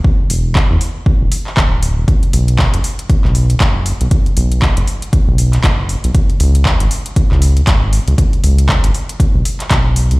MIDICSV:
0, 0, Header, 1, 3, 480
1, 0, Start_track
1, 0, Tempo, 508475
1, 42, Time_signature, 4, 2, 24, 8
1, 9626, End_track
2, 0, Start_track
2, 0, Title_t, "Analog synth bass"
2, 0, Program_c, 0, 38
2, 283, Note_on_c, 0, 28, 95
2, 593, Note_off_c, 0, 28, 0
2, 664, Note_on_c, 0, 40, 99
2, 732, Note_off_c, 0, 40, 0
2, 1144, Note_on_c, 0, 26, 94
2, 1212, Note_off_c, 0, 26, 0
2, 1483, Note_on_c, 0, 26, 81
2, 1864, Note_on_c, 0, 28, 102
2, 1878, Note_off_c, 0, 26, 0
2, 1932, Note_off_c, 0, 28, 0
2, 2203, Note_on_c, 0, 35, 99
2, 2513, Note_off_c, 0, 35, 0
2, 2584, Note_on_c, 0, 30, 100
2, 2652, Note_off_c, 0, 30, 0
2, 3063, Note_on_c, 0, 35, 95
2, 3353, Note_off_c, 0, 35, 0
2, 3402, Note_on_c, 0, 30, 81
2, 3713, Note_off_c, 0, 30, 0
2, 3784, Note_on_c, 0, 35, 88
2, 3852, Note_off_c, 0, 35, 0
2, 4123, Note_on_c, 0, 35, 100
2, 4433, Note_off_c, 0, 35, 0
2, 4502, Note_on_c, 0, 30, 99
2, 4571, Note_off_c, 0, 30, 0
2, 4983, Note_on_c, 0, 35, 94
2, 5273, Note_off_c, 0, 35, 0
2, 5323, Note_on_c, 0, 30, 82
2, 5633, Note_off_c, 0, 30, 0
2, 5703, Note_on_c, 0, 35, 86
2, 5771, Note_off_c, 0, 35, 0
2, 6042, Note_on_c, 0, 37, 100
2, 6352, Note_off_c, 0, 37, 0
2, 6423, Note_on_c, 0, 32, 98
2, 6492, Note_off_c, 0, 32, 0
2, 6903, Note_on_c, 0, 37, 95
2, 7193, Note_off_c, 0, 37, 0
2, 7243, Note_on_c, 0, 32, 83
2, 7553, Note_off_c, 0, 32, 0
2, 7623, Note_on_c, 0, 37, 87
2, 7692, Note_off_c, 0, 37, 0
2, 7963, Note_on_c, 0, 37, 98
2, 8273, Note_off_c, 0, 37, 0
2, 8342, Note_on_c, 0, 32, 98
2, 8411, Note_off_c, 0, 32, 0
2, 8823, Note_on_c, 0, 35, 92
2, 8891, Note_off_c, 0, 35, 0
2, 9162, Note_on_c, 0, 35, 85
2, 9544, Note_on_c, 0, 37, 102
2, 9558, Note_off_c, 0, 35, 0
2, 9612, Note_off_c, 0, 37, 0
2, 9626, End_track
3, 0, Start_track
3, 0, Title_t, "Drums"
3, 42, Note_on_c, 9, 36, 122
3, 137, Note_off_c, 9, 36, 0
3, 283, Note_on_c, 9, 46, 111
3, 377, Note_off_c, 9, 46, 0
3, 523, Note_on_c, 9, 36, 111
3, 524, Note_on_c, 9, 39, 112
3, 617, Note_off_c, 9, 36, 0
3, 618, Note_off_c, 9, 39, 0
3, 764, Note_on_c, 9, 46, 95
3, 858, Note_off_c, 9, 46, 0
3, 1002, Note_on_c, 9, 36, 122
3, 1097, Note_off_c, 9, 36, 0
3, 1242, Note_on_c, 9, 46, 105
3, 1337, Note_off_c, 9, 46, 0
3, 1384, Note_on_c, 9, 39, 35
3, 1479, Note_off_c, 9, 39, 0
3, 1482, Note_on_c, 9, 36, 103
3, 1483, Note_on_c, 9, 39, 111
3, 1577, Note_off_c, 9, 36, 0
3, 1578, Note_off_c, 9, 39, 0
3, 1723, Note_on_c, 9, 46, 95
3, 1818, Note_off_c, 9, 46, 0
3, 1963, Note_on_c, 9, 36, 115
3, 1963, Note_on_c, 9, 42, 63
3, 2057, Note_off_c, 9, 36, 0
3, 2058, Note_off_c, 9, 42, 0
3, 2104, Note_on_c, 9, 42, 36
3, 2198, Note_off_c, 9, 42, 0
3, 2203, Note_on_c, 9, 46, 108
3, 2297, Note_off_c, 9, 46, 0
3, 2343, Note_on_c, 9, 42, 51
3, 2437, Note_off_c, 9, 42, 0
3, 2443, Note_on_c, 9, 36, 108
3, 2443, Note_on_c, 9, 39, 107
3, 2537, Note_off_c, 9, 36, 0
3, 2537, Note_off_c, 9, 39, 0
3, 2583, Note_on_c, 9, 42, 64
3, 2678, Note_off_c, 9, 42, 0
3, 2682, Note_on_c, 9, 46, 94
3, 2776, Note_off_c, 9, 46, 0
3, 2823, Note_on_c, 9, 42, 49
3, 2917, Note_off_c, 9, 42, 0
3, 2922, Note_on_c, 9, 42, 63
3, 2923, Note_on_c, 9, 36, 117
3, 3016, Note_off_c, 9, 42, 0
3, 3017, Note_off_c, 9, 36, 0
3, 3063, Note_on_c, 9, 39, 34
3, 3157, Note_off_c, 9, 39, 0
3, 3161, Note_on_c, 9, 46, 105
3, 3256, Note_off_c, 9, 46, 0
3, 3302, Note_on_c, 9, 42, 48
3, 3397, Note_off_c, 9, 42, 0
3, 3402, Note_on_c, 9, 36, 104
3, 3402, Note_on_c, 9, 42, 61
3, 3403, Note_on_c, 9, 39, 113
3, 3496, Note_off_c, 9, 42, 0
3, 3497, Note_off_c, 9, 36, 0
3, 3497, Note_off_c, 9, 39, 0
3, 3641, Note_on_c, 9, 46, 92
3, 3736, Note_off_c, 9, 46, 0
3, 3783, Note_on_c, 9, 42, 51
3, 3877, Note_off_c, 9, 42, 0
3, 3881, Note_on_c, 9, 42, 65
3, 3882, Note_on_c, 9, 36, 109
3, 3976, Note_off_c, 9, 42, 0
3, 3977, Note_off_c, 9, 36, 0
3, 4023, Note_on_c, 9, 42, 37
3, 4118, Note_off_c, 9, 42, 0
3, 4122, Note_on_c, 9, 46, 104
3, 4217, Note_off_c, 9, 46, 0
3, 4263, Note_on_c, 9, 42, 52
3, 4357, Note_off_c, 9, 42, 0
3, 4362, Note_on_c, 9, 36, 99
3, 4363, Note_on_c, 9, 39, 110
3, 4457, Note_off_c, 9, 36, 0
3, 4457, Note_off_c, 9, 39, 0
3, 4502, Note_on_c, 9, 42, 65
3, 4597, Note_off_c, 9, 42, 0
3, 4602, Note_on_c, 9, 46, 90
3, 4696, Note_off_c, 9, 46, 0
3, 4742, Note_on_c, 9, 42, 51
3, 4836, Note_off_c, 9, 42, 0
3, 4842, Note_on_c, 9, 36, 116
3, 4842, Note_on_c, 9, 42, 66
3, 4936, Note_off_c, 9, 36, 0
3, 4936, Note_off_c, 9, 42, 0
3, 5081, Note_on_c, 9, 46, 103
3, 5176, Note_off_c, 9, 46, 0
3, 5223, Note_on_c, 9, 42, 50
3, 5224, Note_on_c, 9, 39, 34
3, 5317, Note_off_c, 9, 42, 0
3, 5318, Note_off_c, 9, 39, 0
3, 5322, Note_on_c, 9, 36, 97
3, 5322, Note_on_c, 9, 39, 109
3, 5322, Note_on_c, 9, 42, 62
3, 5416, Note_off_c, 9, 36, 0
3, 5416, Note_off_c, 9, 42, 0
3, 5417, Note_off_c, 9, 39, 0
3, 5562, Note_on_c, 9, 46, 89
3, 5656, Note_off_c, 9, 46, 0
3, 5702, Note_on_c, 9, 42, 52
3, 5797, Note_off_c, 9, 42, 0
3, 5801, Note_on_c, 9, 42, 67
3, 5802, Note_on_c, 9, 36, 112
3, 5896, Note_off_c, 9, 42, 0
3, 5897, Note_off_c, 9, 36, 0
3, 5943, Note_on_c, 9, 42, 38
3, 6038, Note_off_c, 9, 42, 0
3, 6042, Note_on_c, 9, 46, 101
3, 6136, Note_off_c, 9, 46, 0
3, 6183, Note_on_c, 9, 42, 55
3, 6277, Note_off_c, 9, 42, 0
3, 6282, Note_on_c, 9, 36, 100
3, 6282, Note_on_c, 9, 39, 116
3, 6376, Note_off_c, 9, 39, 0
3, 6377, Note_off_c, 9, 36, 0
3, 6422, Note_on_c, 9, 42, 67
3, 6517, Note_off_c, 9, 42, 0
3, 6522, Note_on_c, 9, 46, 89
3, 6616, Note_off_c, 9, 46, 0
3, 6663, Note_on_c, 9, 42, 53
3, 6757, Note_off_c, 9, 42, 0
3, 6762, Note_on_c, 9, 42, 67
3, 6763, Note_on_c, 9, 36, 111
3, 6856, Note_off_c, 9, 42, 0
3, 6857, Note_off_c, 9, 36, 0
3, 6904, Note_on_c, 9, 39, 35
3, 6998, Note_off_c, 9, 39, 0
3, 7002, Note_on_c, 9, 46, 100
3, 7097, Note_off_c, 9, 46, 0
3, 7143, Note_on_c, 9, 42, 52
3, 7238, Note_off_c, 9, 42, 0
3, 7243, Note_on_c, 9, 36, 99
3, 7243, Note_on_c, 9, 39, 112
3, 7243, Note_on_c, 9, 42, 67
3, 7337, Note_off_c, 9, 36, 0
3, 7337, Note_off_c, 9, 42, 0
3, 7338, Note_off_c, 9, 39, 0
3, 7483, Note_on_c, 9, 46, 88
3, 7578, Note_off_c, 9, 46, 0
3, 7623, Note_on_c, 9, 42, 54
3, 7718, Note_off_c, 9, 42, 0
3, 7723, Note_on_c, 9, 36, 108
3, 7724, Note_on_c, 9, 42, 67
3, 7817, Note_off_c, 9, 36, 0
3, 7818, Note_off_c, 9, 42, 0
3, 7865, Note_on_c, 9, 42, 39
3, 7959, Note_off_c, 9, 42, 0
3, 7964, Note_on_c, 9, 46, 100
3, 8058, Note_off_c, 9, 46, 0
3, 8104, Note_on_c, 9, 42, 56
3, 8198, Note_off_c, 9, 42, 0
3, 8203, Note_on_c, 9, 36, 100
3, 8203, Note_on_c, 9, 39, 118
3, 8297, Note_off_c, 9, 36, 0
3, 8298, Note_off_c, 9, 39, 0
3, 8344, Note_on_c, 9, 42, 68
3, 8439, Note_off_c, 9, 42, 0
3, 8444, Note_on_c, 9, 46, 89
3, 8538, Note_off_c, 9, 46, 0
3, 8584, Note_on_c, 9, 42, 53
3, 8679, Note_off_c, 9, 42, 0
3, 8683, Note_on_c, 9, 36, 116
3, 8685, Note_on_c, 9, 42, 68
3, 8777, Note_off_c, 9, 36, 0
3, 8779, Note_off_c, 9, 42, 0
3, 8924, Note_on_c, 9, 46, 100
3, 9018, Note_off_c, 9, 46, 0
3, 9065, Note_on_c, 9, 42, 53
3, 9066, Note_on_c, 9, 39, 36
3, 9160, Note_off_c, 9, 39, 0
3, 9160, Note_off_c, 9, 42, 0
3, 9163, Note_on_c, 9, 36, 97
3, 9164, Note_on_c, 9, 39, 115
3, 9164, Note_on_c, 9, 42, 67
3, 9257, Note_off_c, 9, 36, 0
3, 9258, Note_off_c, 9, 42, 0
3, 9259, Note_off_c, 9, 39, 0
3, 9404, Note_on_c, 9, 46, 90
3, 9498, Note_off_c, 9, 46, 0
3, 9544, Note_on_c, 9, 42, 56
3, 9626, Note_off_c, 9, 42, 0
3, 9626, End_track
0, 0, End_of_file